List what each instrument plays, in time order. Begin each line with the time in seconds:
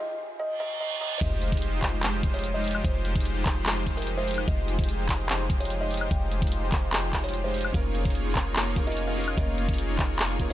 Already playing: grand piano F3 D#4 G4 G#4
0.00 kalimba D#5
0.40 kalimba D#5, reverse cymbal
0.60 kalimba D#5
0.80 kalimba D#5
1.01 kalimba D#5
1.21 808-style bass F1, string section F3 D#4 G4 G#4, supersaw synth G#3 D#4 F4 G4 C5, kalimba D#5, kick, closed hi-hat, crash, sub drop
1.42 closed hi-hat
1.52 supersaw synth G#3 F4 G4 C5, kick, closed hi-hat
1.57 closed hi-hat
1.62 closed hi-hat
1.82 supersaw synth G#3 F4 G4 C5, kick, clap, closed hi-hat
2.03 supersaw synth G#3 D#4 F4 G4 C5, clap, closed hi-hat
2.23 supersaw synth G#3 D#4 F4 G4 C5, kick, closed hi-hat
2.34 kalimba C#5, closed hi-hat
2.39 closed hi-hat
2.44 closed hi-hat
2.54 supersaw synth G#3 D#4 F4 G4 C5, kalimba D#5
2.64 closed hi-hat, open hi-hat
2.71 closed hi-hat, high woodblock
2.84 808-style bass F1, supersaw synth C5, kalimba C5, kick, closed hi-hat
3.05 closed hi-hat
3.16 supersaw synth G#3 D#4 F4 G4 C5, kick, closed hi-hat
3.20 closed hi-hat
3.25 closed hi-hat
3.46 supersaw synth G#3 D#4 F4 G4 C5, kick, clap, closed hi-hat
3.66 supersaw synth G#3 D#4 F4 G4 C5, clap, closed hi-hat
3.86 supersaw synth G#3 D#4 F4 G4 C5, kick, closed hi-hat
3.97 kalimba A#4, closed hi-hat
4.02 closed hi-hat
4.07 closed hi-hat
4.17 supersaw synth G#3 D#4 F4 G4 C5, kalimba C5
4.27 closed hi-hat, open hi-hat
4.34 closed hi-hat, high woodblock
4.48 808-style bass F1, supersaw synth G#3 G4, kalimba D#5, kick, closed hi-hat
4.68 closed hi-hat
4.79 supersaw synth G#3 D#4 F4 G4 C5, kick, closed hi-hat
4.84 closed hi-hat
4.89 closed hi-hat
5.09 supersaw synth G#3 D#4 F4 G4 C5, kick, clap, closed hi-hat
5.29 supersaw synth G#3 D#4 F4 G4 C5, clap, closed hi-hat
5.50 supersaw synth G#3 D#4 F4 G4 C5, kick, closed hi-hat
5.60 kalimba C#5, closed hi-hat
5.65 closed hi-hat
5.70 closed hi-hat
5.81 supersaw synth G#3 D#4 F4 G4 C5, kalimba D#5
5.91 closed hi-hat, open hi-hat
5.97 closed hi-hat, high woodblock
6.11 808-style bass F1, supersaw synth G#3 D#4 F4 G4 C5, kalimba G5, kick, closed hi-hat
6.31 closed hi-hat
6.42 supersaw synth G#3 D#4 F4 G4 C5, kick, closed hi-hat
6.47 closed hi-hat
6.52 closed hi-hat
6.72 kick, clap, closed hi-hat
6.93 supersaw synth G#3 D#4 F4 G4 C5, clap, closed hi-hat
7.13 supersaw synth G#3 D#4 F4 G4 C5, kick, clap, closed hi-hat
7.24 kalimba C#5, closed hi-hat
7.29 closed hi-hat
7.34 closed hi-hat
7.44 supersaw synth G#3 D#4 F4 G4 C5, kalimba C5
7.54 closed hi-hat, open hi-hat
7.61 closed hi-hat, high woodblock
7.72 808-style bass F1, supersaw synth A#3 D#4 F4 G#4 C#5, string section A#3 C#4 F4, grand piano C#4 F4 A#4, kalimba F5, kick, closed hi-hat
7.95 closed hi-hat
8.05 supersaw synth A#3 D#4 F4 G#4 C#5, kick, closed hi-hat
8.10 closed hi-hat
8.15 closed hi-hat
8.35 supersaw synth A#3 D#4 F4 G#4 C#5, kick, clap, closed hi-hat
8.56 supersaw synth A#3 D#4 F4 G#4 C#5, clap, closed hi-hat
8.75 supersaw synth A#3 D#4 F4 G#4 C#5, grand piano C#4 F4 A#4, kick, closed hi-hat
8.86 grand piano C#4 F4 A#4, kalimba D#5, closed hi-hat
8.92 closed hi-hat
8.97 closed hi-hat
9.07 supersaw synth A#3 D#4 F4 G#4 C#5, kalimba F5
9.16 grand piano C#4 F4 A#4, open hi-hat
9.21 closed hi-hat
9.24 closed hi-hat, high woodblock
9.36 808-style bass F1, supersaw synth A#3 F4 G#4 C#5, grand piano C#4 F4, kalimba D#5, kick, closed hi-hat
9.40 grand piano A#4
9.58 closed hi-hat
9.69 supersaw synth A#3 D#4 F4 G#4 C#5, kick, closed hi-hat
9.74 closed hi-hat
9.78 closed hi-hat
9.99 supersaw synth A#3 D#4 F4 G#4 C#5, kick, clap, closed hi-hat
10.19 supersaw synth A#3 D#4 F4 G#4 C#5, clap, closed hi-hat
10.39 supersaw synth A#3 D#4 F4 G#4 C#5, grand piano C#4 F4 A#4, kick, closed hi-hat
10.49 grand piano C#4